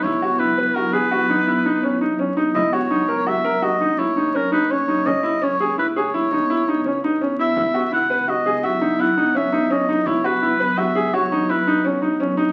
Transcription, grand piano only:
\new Staff \with { instrumentName = "Grand piano" } { \time 7/4 \key e \lydian \tempo 4 = 168 e'8 fis'8 e'8 b'8 fis'8 gis'8 fis'8 dis'8 e'8 dis'8 cis'8 dis'8 cis'8 dis'8 | e'8 fis'8 dis'8 ais'8 fis'8 ais'8 fis'8 dis'8 e'8 dis'8 cis'8 dis'8 cis'8 dis'8 | cis'8 e'8 cis'8 gis'8 e'8 gis'8 e'8 dis'8 e'8 dis'8 cis'8 dis'8 cis'8 e'8 | e'8 fis'8 e'8 b'8 fis'8 gis'8 fis'8 dis'8 e'8 dis'8 cis'8 dis'8 cis'8 dis'8 |
e'8 fis'8 e'8 b'8 fis'8 gis'8 fis'8 dis'8 e'8 dis'8 cis'8 dis'8 cis'8 dis'8 | }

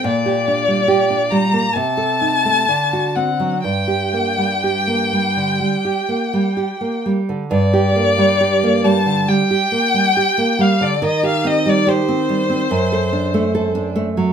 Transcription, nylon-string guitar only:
\new Staff \with { instrumentName = "Nylon-string guitar" } { \time 4/4 \key g \minor \tempo 4 = 68 bes,16 g'16 d'16 g16 g'16 d'16 g16 bes16 c16 a'16 ees'16 a16 d16 fis'16 c'16 fis16 | g,16 g'16 bes16 g16 g'16 bes16 g16 d16 g16 g'16 bes16 g16 g'16 bes16 g16 d16 | g,16 g'16 bes16 g16 g'16 bes16 g16 d16 g16 g'16 bes16 g16 g'16 bes16 g16 d16 | ees16 g'16 c'16 g16 g'16 c'16 g16 c'16 fis,16 a'16 d'16 a16 a'16 d'16 a16 fis16 | }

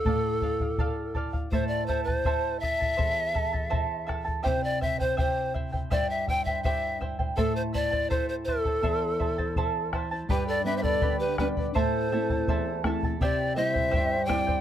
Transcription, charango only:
\new Staff \with { instrumentName = "Charango" } { \time 2/4 \key a \minor \tempo 4 = 82 <a' d'' f''>8 <a' d'' f''>16 <d'' f''>16 <a' d'' f''>8 <a' d'' f''>16 <d'' f''>16 | <e' a' c'' e'' a''>8 <e' a' e'' a''>16 <e' a' a''>16 <e' a' c'' e'' a''>8 <e' a' e'' a''>16 <e' a' a''>16 | <e' a' c'' e'' a''>8 <e' a' e'' a''>16 <e' a' a''>16 <e' a' c'' e'' a''>8 <e' a' e'' a''>16 <e' a' a''>16 | <e' g' c'' e'' g''>8 <e' c'' e'' g''>16 <e' c'' g''>16 <e' g' c'' e'' g''>8 <e' c'' e'' g''>16 <e' c'' g''>16 |
<e' g' c'' e'' g''>8 <e' c'' e'' g''>16 <e' c'' g''>16 <e' g' c'' e'' g''>8 <e' c'' e'' g''>16 <e' c'' g''>16 | <e' a' c'' e'' a''>8 <e' c'' e'' a''>16 <e' c'' a''>16 <e' a' c'' e'' a''>8 <e' c'' e'' a''>16 <e' c'' a''>16 | <e' a' c'' e'' a''>8 <e' c'' e'' a''>16 <e' c'' a''>16 <e' a' c'' e'' a''>8 <e' c'' e'' a''>16 <e' c'' a''>16 | <g' b' d'' g'' b''>8 <b' d'' g'' b''>16 <b' d'' b''>16 <g' b' d'' g'' b''>8 <b' d'' g'' b''>16 <b' d'' b''>16 |
<e' a' c'' e'' a''>8 <e' a' e'' a''>16 <e' a' a''>16 <e' a' c'' e'' a''>8 <e' a' e'' a''>16 <e' a' a''>16 | <e' g' c'' e'' g''>8 <e' c'' e'' g''>16 <e' c'' g''>16 <e' g' c'' e'' g''>8 <e' c'' e'' g''>16 <e' c'' g''>16 | }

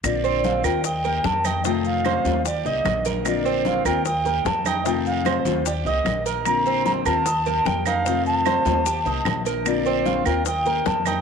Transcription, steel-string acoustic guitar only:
\new Staff \with { instrumentName = "Steel-string acoustic guitar" } { \time 4/4 \key bes \major \tempo 4 = 150 <d bes c' f'>4. <bes c' f'>8 r8 <bes ees' g'>8 <ees bes ees' g'>4 | <c ees a c' f'>4. <ees a c' f'>8 r8 <bes ees' g'>8 <ees bes g'>4 | <d bes c' f'>4. <bes c' f'>8 r8 <bes ees' g'>8 <ees bes ees' g'>4 | <c ees a c' f'>4. <ees a c' f'>8 r8 <bes ees' g'>8 <ees bes ees' g'>4 |
<d bes c' f'>4. <bes c' f'>8 r8 <bes ees' g'>8 <ees bes ees' g'>4 | <c ees a c' f'>4. <ees a c' f'>8 r8 <bes ees' g'>8 <ees bes ees' g'>4 | <d bes c' f'>4. <bes c' f'>8 r8 <bes ees' g'>8 <ees bes ees' g'>4 | }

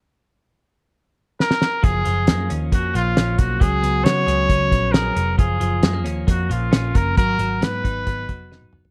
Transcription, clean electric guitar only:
\new Staff \with { instrumentName = "Clean electric guitar" } { \time 4/4 \key fis \major \tempo 4 = 135 r1 | eis8 eis8 ais8 cis'8 ais8 eis8 cis'8 ais8 | fis8 b8 cis'8 gis'8 cis'8 b8 gis'8 cis'8 | eis8 eis8 gis16 ais16 cis'8 ais8 eis8 cis'8 ais8 |
fis8 fis8 b8 dis'8 b8 fis8 dis'8 b8 | }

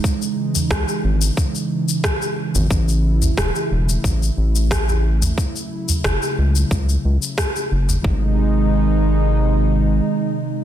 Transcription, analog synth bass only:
\new Staff \with { instrumentName = "Analog synth bass" } { \clef bass \time 4/4 \tempo 4 = 90 r4 cis,16 r16 gis,,8 r4. r16 gis,,16 | a,,4 e,,16 r16 e,,8 a,,8 a,,4. | r4 fis,,16 r16 cis,8 cis,8 cis,16 r8. fis,,8 | gis,,2. r4 | }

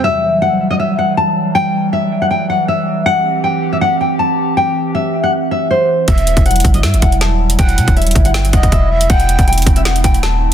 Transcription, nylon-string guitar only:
\new Staff \with { instrumentName = "Nylon-string guitar" } { \time 4/4 \key e \minor \tempo 4 = 159 e''4 fis''8. dis''16 e''8 fis''8 a''4 | g''4 e''8. fis''16 g''8 fis''8 e''4 | fis''4 g''8. e''16 fis''8 g''8 a''4 | g''4 e''8. fis''16 r8 e''8 c''4 |
e''4 fis''8. dis''16 e''8 fis''8 a''4 | g''4 e''8. fis''16 g''8 fis''8 e''4 | fis''4 g''8. e''16 fis''8 g''8 a''4 | }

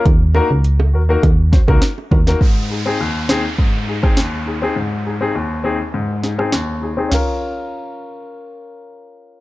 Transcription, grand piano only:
<<
  \new Staff \with { instrumentName = "Grand piano" } { \time 4/4 \key aes \mixolydian \tempo 4 = 102 r8 <bes ees' ges' bes'>16 r8. <ges' bes'>16 <bes ees' ges' bes'>16 r8 <ges' c''>16 <bes ees' ges' bes'>16 r8 <ges' bes'>16 <bes ees' ges' bes'>16 | r8 <ees' aes'>16 <c' ees' aes'>16 r8 <c' ees' aes'>16 r8. <ees' aes'>16 <c' ees' aes'>16 r8 <ees' aes'>16 <c' ees' aes'>16 | r8 <ees' aes'>16 <c' ees' aes'>16 r8 <c' ees' aes'>16 r8. <ees' aes'>16 <c' ees' aes'>16 r8 <ees' aes'>16 <c' ees' aes'>16 | <des' f' bes'>1 | }
  \new Staff \with { instrumentName = "Grand piano" } { \clef bass \time 4/4 \key aes \mixolydian r1 | aes,4 ees,4 aes,4 ees,4 | aes,4 ees,4 aes,4 ees,4 | r1 | }
>>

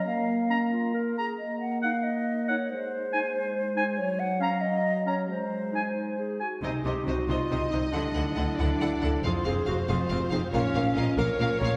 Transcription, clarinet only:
\new Staff \with { instrumentName = "Clarinet" } { \time 6/8 \key aes \mixolydian \tempo 4. = 92 r4 des'16 r16 f'8 bes'8 aes'8 | r4 ees'16 r4 r16 ees'16 r16 | r4 ees'16 r4 r16 ees'16 r16 | r4 des'16 r4 r16 des'16 r16 |
r4 ees'16 r16 ees'8 aes'8 ges'8 | ees'8 g'8 ges'8 f'4 ees'8 | d'2. | f'8 aes'8 ges'8 f'4 ees'8 |
des'4. bes'4 des''8 | }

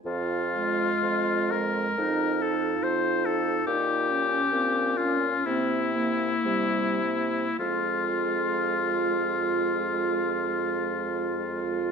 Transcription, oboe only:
\new Staff \with { instrumentName = "Oboe" } { \time 4/4 \key f \minor \tempo 4 = 61 f'4. bes'4 a'8 c''8 a'8 | g'4. f'8 e'2 | f'1 | }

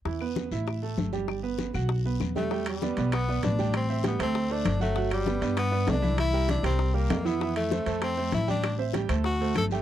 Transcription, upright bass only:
\new Staff \with { instrumentName = "Upright bass" } { \clef bass \time 4/4 \key e \minor \tempo 4 = 196 e,4. a,,4. g,,4~ | g,,4. b,,4. e,4~ | e,4. b,,4. a,,4~ | a,,4. d,4. g,,4~ |
g,,4. g,4. c,4~ | c,4. c,4. f,4~ | f,4. f,4. a,,4~ | a,,4. d,4. g,,4 | }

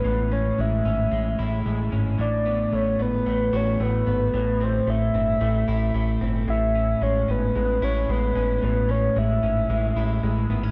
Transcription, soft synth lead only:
\new Staff \with { instrumentName = "Soft synth lead" } { \time 4/4 \key a \major \tempo 4 = 112 b'8 cis''8 e''2~ e''8 r8 | d''4 cis''8 b'8 b'8 cis''8 b'4 | b'8 c''8 e''2~ e''8 r8 | e''4 cis''8 b'8 b'8 cis''8 b'4 |
b'8 cis''8 e''2~ e''8 r8 | }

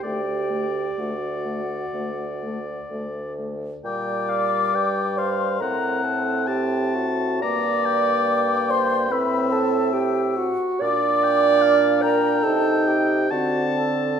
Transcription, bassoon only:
\new Staff \with { instrumentName = "Bassoon" } { \clef bass \time 4/4 \key g \minor \tempo 4 = 67 d,4 d,4 d,4 d,4 | bes,4 g,4 a,2 | g,2 a,4. r8 | bes,2 c4 d4 | }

